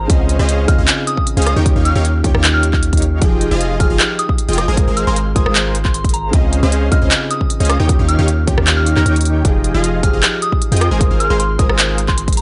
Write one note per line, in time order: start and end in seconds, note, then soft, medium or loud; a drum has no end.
0.00 0.12 G#3 medium
0.00 0.10 F4 medium
0.00 0.12 A#4 medium
0.00 0.12 C5 loud
0.00 0.14 A#5 medium
0.08 0.37 C#2 loud
0.08 0.65 C#3 medium
0.08 0.66 C4 medium
0.08 0.37 C#4 medium
0.08 0.66 F4 medium
0.08 0.37 G#4 medium
0.08 0.37 C5 medium
0.08 0.37 D#5 medium
0.08 0.37 F5 medium
0.08 kick loud
0.08 closed hi-hat medium
0.12 0.67 D#5 medium
0.29 closed hi-hat medium
0.39 0.66 C#2 loud
0.39 0.66 C#4 loud
0.39 0.66 G#4 medium
0.39 0.66 C5 medium
0.39 0.66 D#5 medium
0.39 0.66 F5 loud
0.49 closed hi-hat medium
0.67 0.76 C#2 loud
0.67 0.79 C#3 medium
0.67 0.80 C4 medium
0.67 0.76 C#4 medium
0.67 0.80 F4 medium
0.67 0.76 G#4 medium
0.67 0.80 D#5 loud
0.67 0.76 F5 medium
0.67 0.82 F6 medium
0.67 kick loud
0.67 closed hi-hat medium
0.78 0.87 C#2 loud
0.78 0.89 C#4 loud
0.78 0.89 G#4 medium
0.78 0.89 C5 medium
0.78 0.89 D#5 medium
0.78 0.89 F5 loud
0.88 clap loud
0.88 closed hi-hat medium
1.07 1.14 D#6 medium
1.07 closed hi-hat medium
1.17 1.23 D#6 medium
1.17 kick medium
1.27 closed hi-hat medium
1.37 1.54 C#2 loud
1.37 1.54 C#4 loud
1.37 1.54 G#4 medium
1.37 1.54 C5 medium
1.37 1.54 D#5 loud
1.37 1.54 F5 loud
1.37 closed hi-hat medium
1.42 closed hi-hat medium
1.46 1.70 D#6 medium
1.46 cross-stick medium
1.46 closed hi-hat medium
1.56 1.74 D#2 medium
1.56 1.73 D#3 medium
1.56 1.73 D#4 medium
1.56 1.73 G4 medium
1.56 1.73 C#5 medium
1.56 1.73 G5 medium
1.64 2.21 D#3 medium
1.64 2.22 C#4 medium
1.64 2.22 F4 medium
1.64 kick loud
1.64 closed hi-hat medium
1.68 2.23 G4 medium
1.76 1.93 D#2 loud
1.76 1.93 D#3 medium
1.76 1.93 D#4 medium
1.76 1.93 G4 medium
1.76 1.93 C#5 medium
1.76 1.93 F5 medium
1.85 1.93 F6 medium
1.85 closed hi-hat medium
1.95 2.22 D#2 loud
1.95 2.06 D#3 medium
1.95 2.06 D#4 medium
1.95 2.06 G4 medium
1.95 2.06 C#5 medium
1.95 2.06 F5 loud
2.05 closed hi-hat medium
2.23 2.32 D#2 loud
2.23 2.35 D#3 medium
2.23 2.32 D#3 medium
2.23 2.36 C#4 medium
2.23 2.32 D#4 medium
2.23 2.36 F4 medium
2.23 2.32 G4 medium
2.23 2.36 G4 loud
2.23 2.32 C#5 medium
2.23 2.32 G5 medium
2.23 kick loud
2.23 closed hi-hat medium
2.34 3.23 D#2 medium
2.34 3.19 D#3 medium
2.34 3.19 D#4 medium
2.34 3.19 G4 medium
2.34 3.19 C#5 medium
2.34 3.19 F5 medium
2.34 cross-stick medium
2.44 clap loud
2.44 closed hi-hat medium
2.54 2.93 F6 medium
2.63 closed hi-hat medium
2.73 kick medium
2.73 clap soft
2.83 closed hi-hat medium
2.93 kick medium
2.93 closed hi-hat soft
2.97 closed hi-hat medium
3.02 closed hi-hat medium
3.20 3.49 F1 medium
3.20 3.77 F3 medium
3.20 3.49 F3 medium
3.20 3.77 D#4 medium
3.20 3.49 F4 medium
3.20 3.78 G4 medium
3.20 3.49 G#4 medium
3.20 3.79 G#4 medium
3.20 3.49 D#5 medium
3.20 3.49 G5 medium
3.20 kick loud
3.20 closed hi-hat medium
3.41 closed hi-hat medium
3.51 3.78 F1 loud
3.51 3.78 F3 medium
3.51 3.78 F4 medium
3.51 3.78 G#4 medium
3.51 3.78 D#5 medium
3.51 3.78 F5 loud
3.61 closed hi-hat medium
3.79 3.88 F1 loud
3.79 3.91 F3 medium
3.79 3.88 F3 medium
3.79 3.92 D#4 medium
3.79 3.88 F4 medium
3.79 3.92 G4 medium
3.79 3.88 G#4 medium
3.79 3.92 G#4 loud
3.79 3.88 D#5 medium
3.79 3.88 F5 medium
3.79 3.94 F6 medium
3.79 kick loud
3.79 closed hi-hat medium
3.90 3.99 F1 loud
3.90 4.01 F3 loud
3.90 4.01 F4 medium
3.90 4.01 G#4 medium
3.90 4.00 D#5 medium
3.90 4.01 F5 loud
3.99 clap loud
3.99 closed hi-hat medium
4.19 4.26 D#6 medium
4.19 closed hi-hat medium
4.29 4.35 D#6 medium
4.29 kick medium
4.38 closed hi-hat medium
4.49 4.66 F1 loud
4.49 4.66 F3 loud
4.49 4.66 F4 medium
4.49 4.66 G#4 medium
4.49 4.66 D#5 medium
4.49 4.66 G5 loud
4.49 closed hi-hat soft
4.53 closed hi-hat medium
4.58 4.82 D#6 medium
4.58 cross-stick medium
4.58 closed hi-hat medium
4.68 4.86 G#1 loud
4.68 4.85 G#3 medium
4.68 4.85 G#4 medium
4.68 4.85 A#4 medium
4.68 4.85 C5 medium
4.68 4.85 G#5 medium
4.76 5.33 G#3 medium
4.76 5.33 F4 medium
4.76 5.34 A#4 medium
4.76 kick loud
4.76 closed hi-hat medium
4.80 5.35 C5 medium
4.88 5.05 G#1 medium
4.88 5.05 G#3 medium
4.88 5.05 G#4 medium
4.88 5.05 A#4 medium
4.88 5.05 C5 medium
4.88 5.05 F5 loud
4.97 5.05 F6 medium
4.97 closed hi-hat medium
5.07 5.34 G#1 loud
5.07 5.17 G#3 medium
5.07 5.17 G#4 medium
5.07 5.17 A#4 medium
5.07 5.17 C5 medium
5.07 5.17 F5 loud
5.07 5.13 C6 medium
5.16 5.23 C6 medium
5.16 closed hi-hat medium
5.35 5.44 G#1 loud
5.35 5.47 G#3 medium
5.35 5.44 G#3 medium
5.35 5.47 F4 medium
5.35 5.44 G#4 medium
5.35 5.43 A#4 medium
5.35 5.48 A#4 medium
5.35 5.43 C5 medium
5.35 5.48 C5 loud
5.35 5.44 G#5 medium
5.35 5.42 D#6 medium
5.35 kick loud
5.35 closed hi-hat medium
5.46 6.31 G#1 medium
5.46 6.31 G#3 medium
5.46 6.31 G#4 medium
5.46 6.31 A#4 medium
5.46 6.31 C5 medium
5.46 6.31 F5 medium
5.46 5.52 D#6 medium
5.46 cross-stick medium
5.55 clap loud
5.55 closed hi-hat medium
5.75 closed hi-hat medium
5.85 5.91 C6 medium
5.85 kick medium
5.85 clap soft
5.94 6.01 C6 medium
5.94 closed hi-hat medium
6.04 kick medium
6.04 closed hi-hat soft
6.09 closed hi-hat medium
6.14 6.37 A#5 medium
6.14 closed hi-hat medium
6.31 6.61 C#2 loud
6.31 6.88 C#3 medium
6.31 6.89 C4 medium
6.31 6.60 C#4 medium
6.31 6.90 F4 medium
6.31 6.60 G#4 medium
6.31 6.60 C5 medium
6.31 6.60 D#5 medium
6.31 6.90 D#5 medium
6.31 6.60 F5 medium
6.31 kick loud
6.31 closed hi-hat medium
6.53 closed hi-hat medium
6.63 6.90 C#2 loud
6.63 6.89 C#4 loud
6.63 6.89 G#4 medium
6.63 6.89 C5 medium
6.63 6.89 D#5 medium
6.63 6.89 F5 loud
6.72 closed hi-hat medium
6.91 7.00 C#2 loud
6.91 7.03 C#3 medium
6.91 7.03 C4 medium
6.91 6.99 C#4 medium
6.91 7.04 F4 medium
6.91 6.99 G#4 medium
6.91 6.99 C5 medium
6.91 6.99 D#5 medium
6.91 7.04 D#5 loud
6.91 6.99 F5 medium
6.91 7.05 F6 medium
6.91 kick loud
6.91 closed hi-hat medium
7.02 7.10 C#2 loud
7.02 7.12 C#4 loud
7.02 7.12 G#4 medium
7.02 7.12 C5 medium
7.02 7.12 D#5 medium
7.02 7.12 F5 loud
7.11 clap loud
7.11 closed hi-hat medium
7.31 7.37 D#6 medium
7.31 closed hi-hat medium
7.41 7.47 D#6 medium
7.41 kick medium
7.50 closed hi-hat medium
7.60 7.78 C#2 loud
7.60 7.77 C#4 loud
7.60 7.77 G#4 loud
7.60 7.77 C5 medium
7.60 7.77 D#5 medium
7.60 7.77 F5 loud
7.60 closed hi-hat soft
7.65 closed hi-hat medium
7.70 7.93 D#6 medium
7.70 cross-stick medium
7.70 closed hi-hat medium
7.80 7.97 D#2 medium
7.80 7.97 D#3 medium
7.80 7.97 D#4 medium
7.80 7.97 G4 medium
7.80 7.97 C#5 medium
7.80 7.97 G5 medium
7.87 8.44 D#3 medium
7.87 8.45 C#4 medium
7.87 8.46 F4 medium
7.87 8.46 G4 medium
7.87 kick loud
7.87 closed hi-hat medium
7.99 8.17 D#2 loud
7.99 8.16 D#3 medium
7.99 8.16 D#4 medium
7.99 8.16 G4 medium
7.99 8.16 C#5 medium
7.99 8.16 F5 medium
8.08 8.17 F6 medium
8.08 closed hi-hat medium
8.19 8.46 D#2 loud
8.19 8.29 D#3 medium
8.19 8.29 D#4 medium
8.19 8.29 G4 medium
8.19 8.29 C#5 medium
8.19 8.29 F5 loud
8.28 closed hi-hat medium
8.47 8.56 D#2 loud
8.47 8.59 D#3 medium
8.47 8.55 D#3 medium
8.47 8.59 C#4 medium
8.47 8.55 D#4 medium
8.47 8.59 F4 medium
8.47 8.55 G4 medium
8.47 8.60 G4 loud
8.47 8.55 C#5 medium
8.47 8.55 G5 medium
8.47 kick loud
8.47 closed hi-hat medium
8.58 8.95 D#2 loud
8.58 8.95 D#3 medium
8.58 8.95 D#4 medium
8.58 8.95 G4 medium
8.58 8.95 C#5 medium
8.58 8.95 F5 medium
8.58 cross-stick medium
8.67 clap loud
8.67 closed hi-hat medium
8.77 9.16 F6 medium
8.86 closed hi-hat medium
8.97 9.04 D#2 loud
8.97 9.04 D#3 medium
8.97 9.04 D#4 medium
8.97 9.04 G4 medium
8.97 9.04 C#5 medium
8.97 9.04 A#5 medium
8.97 clap soft
9.06 9.43 D#2 loud
9.06 9.43 D#3 medium
9.06 9.43 D#4 medium
9.06 9.43 G4 medium
9.06 9.43 C#5 medium
9.06 9.43 G5 loud
9.06 closed hi-hat medium
9.16 closed hi-hat medium
9.21 closed hi-hat medium
9.25 closed hi-hat medium
9.43 9.73 F1 medium
9.43 10.00 F3 medium
9.43 9.72 F3 medium
9.43 10.01 D#4 medium
9.43 9.72 F4 medium
9.43 10.01 G4 medium
9.43 9.72 G#4 medium
9.43 9.72 D#5 medium
9.43 9.72 G5 medium
9.43 kick loud
9.43 closed hi-hat medium
9.47 10.02 G#4 medium
9.64 closed hi-hat medium
9.74 10.01 F1 loud
9.74 10.01 F3 loud
9.74 10.01 F4 medium
9.74 10.01 G#4 medium
9.74 10.01 D#5 medium
9.74 10.01 F5 loud
9.84 closed hi-hat medium
10.02 10.11 F1 loud
10.02 10.14 F3 medium
10.02 10.11 F3 medium
10.02 10.15 D#4 medium
10.02 10.11 F4 medium
10.02 10.15 G4 medium
10.02 10.11 G#4 medium
10.02 10.15 G#4 loud
10.02 10.11 D#5 medium
10.02 10.11 F5 medium
10.02 10.17 F6 medium
10.02 kick loud
10.02 closed hi-hat medium
10.13 10.22 F1 loud
10.13 10.24 F3 medium
10.13 10.24 F4 medium
10.13 10.24 G#4 medium
10.13 10.24 D#5 medium
10.13 10.24 F5 loud
10.23 clap loud
10.23 closed hi-hat medium
10.42 10.49 D#6 medium
10.42 closed hi-hat medium
10.52 10.58 D#6 medium
10.52 kick medium
10.62 closed hi-hat medium
10.72 10.89 F2 loud
10.72 10.89 F3 loud
10.72 10.89 F4 medium
10.72 10.89 G#4 medium
10.72 10.89 D#5 medium
10.72 10.89 G5 loud
10.72 closed hi-hat medium
10.77 closed hi-hat medium
10.81 11.05 D#6 medium
10.81 cross-stick medium
10.81 closed hi-hat medium
10.91 11.09 G#1 loud
10.91 11.08 G#3 medium
10.91 11.08 G#4 medium
10.91 11.08 A#4 medium
10.91 11.08 C5 medium
10.91 11.08 G#5 medium
10.99 11.56 G#3 medium
10.99 11.56 F4 medium
10.99 11.57 A#4 medium
10.99 kick loud
10.99 closed hi-hat medium
11.03 11.58 C5 medium
11.11 11.28 G#1 loud
11.11 11.28 G#3 medium
11.11 11.28 G#4 medium
11.11 11.28 A#4 medium
11.11 11.28 C5 medium
11.11 11.28 F5 medium
11.20 11.28 F6 medium
11.20 closed hi-hat medium
11.30 11.57 G#1 loud
11.30 11.41 G#3 medium
11.30 11.41 G#4 medium
11.30 11.41 A#4 medium
11.30 11.41 C5 medium
11.30 11.41 F5 loud
11.30 11.36 C6 medium
11.39 11.46 C6 medium
11.39 closed hi-hat medium
11.58 11.67 G#1 loud
11.58 11.70 G#3 medium
11.58 11.67 G#3 medium
11.58 11.71 F4 medium
11.58 11.67 G#4 medium
11.58 11.67 A#4 medium
11.58 11.71 A#4 medium
11.58 11.67 C5 medium
11.58 11.71 C5 loud
11.58 11.67 G#5 medium
11.58 11.66 D#6 medium
11.58 kick loud
11.58 closed hi-hat medium
11.69 12.42 G#1 loud
11.69 12.42 G#3 medium
11.69 12.42 G#4 medium
11.69 12.42 A#4 medium
11.69 12.42 C5 medium
11.69 12.42 F5 medium
11.69 11.75 D#6 medium
11.69 cross-stick medium
11.79 clap loud
11.79 closed hi-hat medium
11.98 closed hi-hat medium
12.08 12.14 C6 medium
12.08 kick medium
12.08 clap soft
12.18 12.24 C6 medium
12.18 closed hi-hat medium
12.28 kick medium
12.28 closed hi-hat medium
12.33 closed hi-hat medium
12.37 12.42 A#5 medium
12.37 closed hi-hat medium